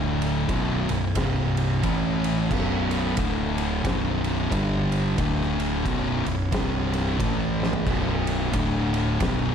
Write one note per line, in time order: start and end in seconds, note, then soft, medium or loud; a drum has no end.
0.00 0.45 D1 medium
0.00 0.48 D2 medium
0.00 0.49 A2 loud
0.00 0.49 D3 medium
0.22 ride medium
0.49 0.87 B0 loud
0.49 0.89 B1 medium
0.49 0.89 F#2 loud
0.49 0.89 B2 loud
0.49 kick loud
0.49 ride medium
0.89 1.15 B0 medium
0.89 1.11 B1 medium
0.89 1.11 F#2 medium
0.89 ride medium
1.15 1.79 C1 medium
1.15 1.82 C2 loud
1.15 1.83 G2 loud
1.15 1.83 C3 medium
1.15 kick loud
1.15 snare loud
1.15 ride loud
1.57 ride medium
1.82 2.47 A1 loud
1.82 2.49 A2 loud
1.82 2.50 E3 medium
1.82 2.50 A3 loud
1.82 kick medium
1.82 ride medium
2.24 ride medium
2.50 3.14 B0 loud
2.50 3.16 B1 medium
2.50 3.17 F#2 medium
2.50 3.17 B2 medium
2.50 kick loud
2.50 crash medium
2.91 ride medium
3.17 3.81 D1 medium
3.17 3.83 D2 medium
3.17 3.84 A2 loud
3.17 3.84 D3 loud
3.17 kick loud
3.17 ride loud
3.58 ride medium
3.84 4.48 B0 medium
3.84 4.51 B1 medium
3.84 4.51 F#2 medium
3.84 4.51 B2 loud
3.84 kick loud
3.84 snare loud
3.84 ride medium
4.24 ride medium
4.51 5.15 G1 medium
4.51 5.18 G2 medium
4.51 5.18 D3 medium
4.51 5.18 G3 loud
4.51 kick loud
4.51 ride loud
4.92 ride medium
5.18 5.82 D1 loud
5.18 5.85 D2 medium
5.18 5.85 A2 medium
5.18 5.86 D3 loud
5.18 kick medium
5.18 ride medium
5.41 snare soft
5.60 ride medium
5.85 6.24 B0 medium
5.85 6.25 B1 medium
5.85 6.25 F#2 medium
5.85 6.25 B2 loud
5.85 kick loud
5.85 ride medium
6.25 6.51 B0 medium
6.25 6.47 B1 medium
6.25 6.48 F#2 medium
6.25 ride medium
6.52 7.16 C1 medium
6.52 7.19 C2 medium
6.52 7.19 G2 medium
6.52 7.19 C3 loud
6.52 kick loud
6.52 snare loud
6.52 ride loud
6.94 ride medium
7.20 7.83 A1 medium
7.20 7.85 A2 medium
7.20 7.86 E3 medium
7.20 7.86 A3 loud
7.20 kick loud
7.20 ride loud
7.63 snare medium
7.73 floor tom loud
7.85 8.50 B0 loud
7.85 8.52 B1 medium
7.85 8.52 F#2 loud
7.85 8.53 B2 medium
7.85 kick loud
7.85 crash medium
8.27 ride medium
8.52 9.17 D1 loud
8.52 9.19 D2 medium
8.52 9.20 A2 loud
8.52 9.20 D3 loud
8.52 kick loud
8.52 ride loud
8.94 ride medium
9.19 9.55 B0 loud
9.19 9.55 B1 medium
9.19 9.55 F#2 loud
9.19 9.55 B2 loud
9.19 kick loud
9.19 snare loud
9.19 ride loud